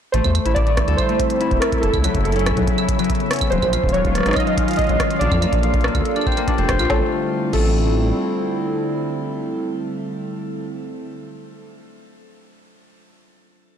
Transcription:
0.12 detuned saw bass A1, analog synth pad D3, harp A3, synth texture E4 E5, synth keys C5, closed hi-hat
0.24 detuned saw bass E2, kick, closed hi-hat, claves
0.30 analog synth pad G3
0.35 closed hi-hat, claves
0.46 detuned saw bass A1, harp E4, analog synth pad E4, closed hi-hat
0.55 synth keys D5, kick, closed hi-hat
0.66 harp A3, analog synth pad C4, closed hi-hat
0.77 kick, cross-stick, closed hi-hat
0.88 detuned saw bass D2, harp A4, closed hi-hat
0.97 synth keys C5, kick, closed hi-hat, claves
1.09 harp A3, closed hi-hat
1.20 kick, closed hi-hat
1.30 closed hi-hat
1.41 harp E4, closed hi-hat
1.51 detuned saw bass E1, kick, closed hi-hat
1.60 harp A3, synth keys A#4, cross-stick, closed hi-hat
1.72 kick, closed hi-hat
1.81 detuned saw bass F#1, analog synth pad C#3, harp E4, synth keys A4, closed hi-hat
1.93 detuned saw bass C#2, kick, closed hi-hat, claves
2.02 analog synth pad F#3, harp F#3, closed hi-hat, claves
2.15 detuned saw bass F#1, kick, closed hi-hat
2.24 synth keys A4, closed hi-hat
2.32 harp C#4, closed hi-hat
2.36 analog synth pad B3, closed hi-hat
2.39 closed hi-hat
2.46 kick, cross-stick, closed hi-hat, claves
2.52 kick
2.57 detuned saw bass B1, harp F#3, kick, closed hi-hat
2.62 kick
2.67 kick, closed hi-hat
2.78 harp E4, closed hi-hat, claves
2.88 kick, closed hi-hat
2.99 harp F#3, closed hi-hat, claves
3.04 closed hi-hat
3.10 kick, closed hi-hat
3.15 closed hi-hat
3.20 closed hi-hat
3.31 harp C#4, cross-stick, closed hi-hat
3.33 closed hi-hat
3.36 closed hi-hat
3.39 closed hi-hat
3.41 kick, closed hi-hat, claves
3.50 detuned saw bass D#1, analog synth pad D#3, harp F#3, synth texture F4 F5, synth keys C5, closed hi-hat
3.62 detuned saw bass A#1, analog synth pad G#3, kick, closed hi-hat, claves
3.73 harp F4, closed hi-hat, claves
3.84 detuned saw bass D#1, kick
3.89 synth keys C#5, closed hi-hat
3.94 harp F#3, closed hi-hat
3.99 analog synth pad C#4
4.05 kick, closed hi-hat
4.15 cross-stick, closed hi-hat
4.18 cross-stick
4.21 cross-stick
4.23 detuned saw bass G#1, cross-stick
4.26 analog synth pad F#3, harp D#4, cross-stick, closed hi-hat
4.29 cross-stick
4.31 cross-stick, closed hi-hat
4.34 synth keys D#5, kick, cross-stick, closed hi-hat, claves
4.40 closed hi-hat
4.47 harp F#3, closed hi-hat
4.58 kick, closed hi-hat
4.68 harp F4, closed hi-hat
4.71 closed hi-hat
4.73 closed hi-hat
4.76 synth keys D#5, kick, closed hi-hat
4.79 closed hi-hat
4.84 closed hi-hat
4.87 detuned saw bass A#1, harp F#3, closed hi-hat
4.89 closed hi-hat
5.00 kick, cross-stick, closed hi-hat
5.11 closed hi-hat
5.19 detuned saw bass A#1, harp D4, synth keys D5, closed hi-hat
5.29 detuned saw bass F2, analog synth pad D4, kick, closed hi-hat, claves
5.37 analog synth pad A4
5.42 harp A#3, closed hi-hat, claves
5.53 detuned saw bass A#1, kick, closed hi-hat
5.63 harp F4, closed hi-hat
5.74 kick, closed hi-hat
5.81 harp A#3, cross-stick, closed hi-hat
5.88 closed hi-hat
5.95 detuned saw bass D2, analog synth pad G4, kick, closed hi-hat, claves
6.05 closed hi-hat
6.16 harp D4, closed hi-hat, claves
6.21 claves
6.26 harp C4, kick, claves
6.32 claves
6.37 harp A#3, closed hi-hat, claves
6.48 harp D4, kick, closed hi-hat
6.58 detuned saw bass F1, harp C4, closed hi-hat
6.69 detuned saw bass F1, harp C5, kick, cross-stick, closed hi-hat
6.79 detuned saw bass A#1, harp F4, closed hi-hat, claves
6.90 detuned saw bass A1, analog synth pad D3, harp A3, synth keys A4, kick, snare
6.96 analog synth pad G3
7.02 analog synth pad C4
7.09 analog synth pad E4
7.53 detuned saw bass A1, harp A3, synth keys A4, kick, crash

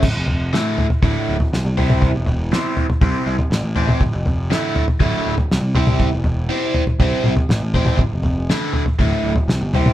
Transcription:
0.03 picked electric bass D1, kick, floor tom, crash
0.15 picked electric bass F1
0.27 picked electric bass F1, floor tom
0.53 overdriven electric guitar A2 D3 A3 E4, snare
0.78 floor tom
0.90 floor tom
1.02 picked electric bass D1, overdriven electric guitar A2 D3 A3 E4, kick, floor tom
1.29 picked electric bass D1
1.40 floor tom
1.53 picked electric bass C2, snare
1.65 picked electric bass C2
1.77 picked electric bass C2, overdriven electric guitar C4 E4 G4 C5, floor tom
1.90 floor tom, mid tom
2.01 kick, floor tom
2.15 picked electric bass E1
2.26 picked electric bass E1, floor tom
2.52 overdriven electric guitar C4 E4 G4 C5, snare
2.77 floor tom
2.90 floor tom
3.01 picked electric bass C2, overdriven electric guitar C4 E4 G4 C5, kick, floor tom
3.26 picked electric bass C2
3.39 floor tom
3.50 picked electric bass A1, snare
3.64 picked electric bass A1
3.76 overdriven electric guitar C4 E4 G4 C5, floor tom
3.89 floor tom, mid tom
4.01 picked electric bass D1, kick, floor tom
4.14 picked electric bass F1
4.26 picked electric bass F1, floor tom
4.50 overdriven electric guitar A2 D3 A3 E4, snare
4.76 floor tom
4.88 floor tom
5.00 picked electric bass D1, overdriven electric guitar A2 D3 A3 E4, kick, floor tom
5.27 picked electric bass D1
5.38 floor tom
5.51 picked electric bass C2, snare
5.61 picked electric bass C2
5.75 picked electric bass C2, overdriven electric guitar C4 E4 G4 C5, floor tom
5.87 floor tom, mid tom
6.00 kick, floor tom
6.13 picked electric bass E1
6.24 picked electric bass E1, floor tom
6.49 overdriven electric guitar C4 E4 G4 C5
6.74 floor tom
6.87 floor tom
7.00 picked electric bass C2, overdriven electric guitar C4 E4 G4 C5, kick, floor tom
7.24 picked electric bass C2, mid tom
7.37 floor tom
7.49 picked electric bass A1, snare, mid tom
7.63 picked electric bass A1
7.74 overdriven electric guitar C4 E4 G4 C5, kick, floor tom, mid tom
7.86 floor tom, mid tom
7.97 picked electric bass D1, kick, floor tom
8.13 picked electric bass F1
8.23 picked electric bass F1, floor tom
8.50 overdriven electric guitar A2 D3 A3 E4, snare
8.73 floor tom
8.86 floor tom
8.99 picked electric bass D1, overdriven electric guitar A2 D3 A3 E4, kick, floor tom
9.24 picked electric bass D1
9.36 floor tom
9.48 picked electric bass C2, snare
9.61 picked electric bass G1
9.74 picked electric bass C2, overdriven electric guitar C4 E4 G4 C5, floor tom
9.86 floor tom, mid tom

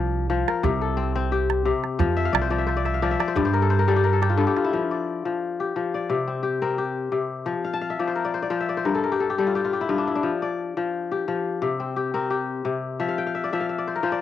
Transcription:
Already playing: upright bass C2, kora F3 D5
0.30 kora F3
0.48 kora A#4, calabash click
0.63 upright bass C2, kora C3, calabash thump, calabash click
0.81 kora A4
0.97 kora C4
1.16 kora C4
1.32 kora G4
1.50 calabash click
1.65 kora C3
1.84 calabash click
1.99 upright bass F2, kora F3, calabash thump, calabash click
2.17 kora E5
2.25 kora F5
2.33 upright bass C2, kora D5, calabash click
2.42 kora C5
2.50 kora F3 D5, calabash click
2.58 kora E5
2.67 kora C5, calabash click
2.76 kora D5
2.85 kora E5, calabash click
2.94 kora F5
3.02 kora F3 D5, calabash click
3.11 kora E5
3.19 kora D5, calabash click
3.28 kora C5
3.36 upright bass G2, kora G2 D5, calabash thump
3.45 kora C5
3.53 kora A#4, calabash click
3.62 kora A4
3.70 kora C5
3.79 kora A#4
3.88 kora G3 A4
3.96 kora G4
4.04 kora A#4
4.13 kora A4
4.22 kora G4, calabash click
4.30 kora F4
4.37 kora G2 A4
4.47 kora G4
4.56 kora F4, calabash click
4.64 kora E4
4.73 kora F3
4.91 kora D5
5.25 kora F3
5.60 kora G4
5.76 kora F3
5.94 kora D5
6.10 kora C3
6.28 kora C4
6.43 kora G4
6.62 kora C4 A#4
6.78 kora G4
7.12 kora C3
7.46 kora F3
7.65 kora F5
7.74 kora A5
7.81 kora F5
7.90 kora E5
7.99 kora F3 D5
8.07 kora C5
8.15 kora A#4
8.25 kora D5
8.34 kora C5
8.42 kora D5
8.50 kora F3 C5
8.60 kora E5
8.69 kora D5
8.77 kora C5
8.85 kora G2 A#4
8.95 kora A4
9.03 kora A#4
9.12 kora G4
9.20 kora A4
9.30 kora G4
9.38 kora G3 A4
9.47 kora F4
9.55 kora G4
9.64 kora F4
9.73 kora G4
9.81 kora E4
9.89 kora G2 F4
9.98 kora D4
10.07 kora E4
10.15 kora D4
10.23 kora F3
10.42 kora D5
10.77 kora F3
11.11 kora G4
11.28 kora F3
11.62 kora C3
11.80 kora C4
11.96 kora G4
12.14 kora C4 A#4
12.30 kora G4
12.65 kora C3
13.00 kora F3 E5
13.08 kora F5
13.18 kora G5
13.27 kora F5
13.35 kora E5
13.44 kora D5
13.53 kora F3 E5
13.60 kora F5
13.69 kora E5
13.78 kora D5
13.88 kora C5
13.96 kora A#4
14.03 kora F3 C5
14.12 kora D5

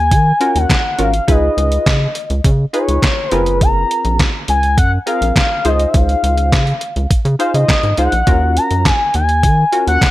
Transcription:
Already playing: analog synth bass D#2, analog synth lead G#5
0.11 analog synth bass D#3, kick, closed hi-hat
0.40 analog polysynth C#4 F4 F#4 A#4, closed hi-hat
0.55 analog synth bass D#2, analog synth lead F#5, closed hi-hat
0.70 kick, snare, clap, closed hi-hat
0.98 analog synth bass G#1, analog polysynth C#4 F4 F#4 A#4, analog synth lead F5, closed hi-hat
1.14 closed hi-hat
1.28 analog synth bass C#2, analog polysynth D#4 F4 G#4 B4, analog synth lead D#5, kick, closed hi-hat
1.57 analog synth bass C#2, closed hi-hat
1.72 closed hi-hat
1.86 analog synth bass C#3, kick, snare, clap, closed hi-hat
2.15 closed hi-hat
2.30 analog synth bass C#2, closed hi-hat
2.44 analog synth bass C#3, kick, closed hi-hat
2.73 analog polysynth D#4 F4 G#4 B4, analog synth lead C#5, closed hi-hat
2.88 analog synth bass C#2, closed hi-hat
3.02 kick, snare, clap, closed hi-hat
3.31 analog synth bass F#1, analog polysynth C4 F4 G#4 A#4, analog synth lead B4, closed hi-hat
3.46 closed hi-hat
3.61 analog synth lead A#5, kick, closed hi-hat
3.91 closed hi-hat
4.05 analog synth bass A#1, closed hi-hat
4.19 kick, snare, clap, closed hi-hat
4.48 analog synth bass C#2, analog synth lead G#5, closed hi-hat
4.63 closed hi-hat
4.78 analog synth bass F#2, analog synth lead F#5, kick, closed hi-hat
5.06 analog polysynth C4 F4 G#4 A#4, analog synth lead F5, closed hi-hat
5.21 analog synth bass A#1, closed hi-hat
5.36 analog synth lead F5, kick, snare, clap, closed hi-hat
5.65 analog synth bass C#2, analog polysynth D#4 F4 G#4 C5, analog synth lead D#5, closed hi-hat
5.80 closed hi-hat
5.88 analog synth lead E5
5.94 analog synth bass C#2, analog synth lead F5, kick, closed hi-hat
6.09 closed hi-hat
6.23 analog synth bass C#2, closed hi-hat
6.38 closed hi-hat
6.52 analog synth bass C#3, kick, snare, clap, closed hi-hat
6.67 closed hi-hat
6.81 closed hi-hat
6.96 analog synth bass C#2, closed hi-hat
7.11 kick, closed hi-hat
7.25 analog synth bass C#3, closed hi-hat
7.39 analog polysynth D#4 F4 G#4 C5, analog synth lead F5, closed hi-hat
7.54 analog synth bass C#3, analog synth lead D#5, closed hi-hat
7.69 kick, snare, clap, closed hi-hat
7.83 analog synth bass G#2, closed hi-hat
7.97 analog synth bass C#2, analog polysynth D#4 F4 G#4 C5, analog synth lead F#5, closed hi-hat
8.12 analog synth bass A#1, closed hi-hat
8.27 analog synth bass D#2, analog polysynth C#4 F4 F#4 A#4, kick, closed hi-hat
8.57 analog synth lead A#5, closed hi-hat
8.71 analog synth bass F#2, closed hi-hat
8.85 analog synth lead G#5, kick, snare, clap, closed hi-hat
9.14 analog synth bass D#2, analog synth lead G#5, closed hi-hat
9.29 closed hi-hat
9.43 analog synth bass D#3, kick, closed hi-hat
9.72 analog polysynth C#4 F4 F#4 A#4, closed hi-hat
9.87 analog synth bass D#2, analog synth lead F#5, closed hi-hat
10.02 kick, snare, clap, closed hi-hat

